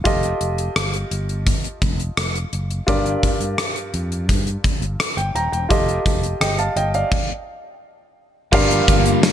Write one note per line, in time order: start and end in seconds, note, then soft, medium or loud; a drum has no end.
0.04 0.32 F1 loud
0.04 2.83 F4 medium
0.04 2.84 G4 medium
0.04 2.84 A4 medium
0.04 2.84 D#5 medium
0.04 kick loud
0.04 closed hi-hat medium
0.23 closed hi-hat medium
0.41 0.67 F1 medium
0.41 closed hi-hat medium
0.58 closed hi-hat medium
0.76 1.03 G1 medium
0.76 cross-stick loud
0.76 closed hi-hat medium
0.93 closed hi-hat soft
1.11 1.51 G1 medium
1.11 closed hi-hat medium
1.29 closed hi-hat soft
1.47 kick medium
1.47 closed hi-hat medium
1.64 closed hi-hat soft
1.82 2.08 F1 medium
1.82 kick medium
1.82 closed hi-hat medium
2.00 closed hi-hat soft
2.17 2.44 F1 medium
2.17 cross-stick loud
2.17 closed hi-hat medium
2.35 closed hi-hat soft
2.53 2.79 F#1 medium
2.53 closed hi-hat medium
2.70 closed hi-hat soft
2.87 3.14 G1 loud
2.87 3.90 G2 medium
2.87 5.66 F4 medium
2.87 5.66 G4 medium
2.87 5.66 A#4 medium
2.87 5.67 D5 medium
2.87 kick loud
2.87 closed hi-hat medium
3.06 closed hi-hat medium
3.23 kick medium
3.23 closed hi-hat medium
3.41 3.54 G2 medium
3.41 closed hi-hat medium
3.58 cross-stick loud
3.58 closed hi-hat medium
3.76 closed hi-hat soft
3.94 4.29 F2 medium
3.94 closed hi-hat medium
4.12 closed hi-hat soft
4.29 4.55 G2 medium
4.29 kick medium
4.29 closed hi-hat medium
4.47 closed hi-hat soft
4.64 kick medium
4.64 closed hi-hat medium
4.82 4.95 G1 medium
4.82 closed hi-hat soft
5.00 cross-stick loud
5.00 closed hi-hat medium
5.17 5.30 G1 medium
5.17 5.34 G5 medium
5.17 closed hi-hat soft
5.35 5.48 D#1 medium
5.35 5.51 G5 medium
5.35 5.52 A#5 medium
5.35 closed hi-hat medium
5.52 5.66 E1 medium
5.52 5.86 G5 medium
5.52 closed hi-hat soft
5.69 5.97 F1 medium
5.69 7.08 F4 medium
5.69 7.08 G4 medium
5.69 7.09 A4 medium
5.69 6.40 D#5 medium
5.69 kick loud
5.69 closed hi-hat medium
5.89 closed hi-hat medium
6.06 6.32 F1 medium
6.06 kick medium
6.06 closed hi-hat medium
6.23 closed hi-hat medium
6.41 6.67 G1 medium
6.41 6.58 D#5 soft
6.41 6.58 G5 medium
6.41 cross-stick loud
6.41 closed hi-hat medium
6.58 6.76 F5 medium
6.58 6.75 A5 medium
6.58 closed hi-hat medium
6.76 7.03 G1 loud
6.76 6.93 D#5 medium
6.76 6.93 G5 medium
6.76 closed hi-hat medium
6.94 7.28 D5 soft
6.94 7.28 F5 medium
6.94 closed hi-hat soft
7.12 kick loud
7.12 crash medium
8.52 8.79 G1 loud
8.52 9.32 G2 medium
8.52 9.32 D3 medium
8.52 9.32 F3 medium
8.52 9.32 G3 medium
8.52 9.32 G3 loud
8.52 9.32 A#3 medium
8.52 9.32 F4 medium
8.52 9.32 G4 medium
8.52 9.32 A#4 medium
8.52 9.32 D5 medium
8.52 9.32 F5 medium
8.52 kick loud
8.52 crash loud
8.71 closed hi-hat medium
8.88 9.14 G1 medium
8.88 kick medium
8.88 closed hi-hat medium
9.06 closed hi-hat medium
9.23 muted fretless electric bass stroke soft
9.23 snare loud
9.23 closed hi-hat medium
9.23 tambourine medium